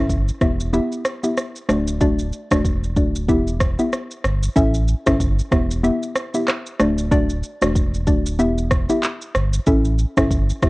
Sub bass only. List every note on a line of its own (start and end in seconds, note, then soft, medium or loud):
0.00 0.30 G1 medium
0.41 0.79 E1 loud
1.69 2.31 D1 loud
2.51 2.98 E1 medium
2.96 3.30 D1 medium
3.28 3.77 E1 loud
4.24 4.48 G1 medium
4.56 4.94 A1 loud
5.07 5.41 G1 medium
5.52 5.90 E1 loud
6.80 7.42 D1 loud
7.62 8.09 E1 medium
8.07 8.41 D1 medium
8.39 8.87 E1 loud
9.35 9.59 G1 medium
9.67 10.05 A1 loud
10.17 10.51 G1 medium
10.62 10.69 E1 loud